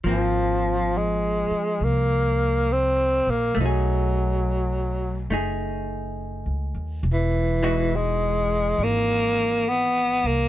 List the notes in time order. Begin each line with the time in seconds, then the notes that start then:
0.04 G#1 F3 A#3
0.08 F3 C4
0.97 G#3
1.50 muted upright bass stroke
1.80 C2 A#3
2.73 C4
3.27 A#1 A#3
3.55 B1 A3
3.60 F#3 D#4
3.66 G#4
5.30 F#1 A3 D#4 G#4
6.46 C#2
6.75 D#2
7.03 E1
7.13 E3
7.63 E3 G#3 D#4 F#4
7.96 G#3
8.78 G#1
8.84 A#3
9.69 B3
10.24 C2 A#3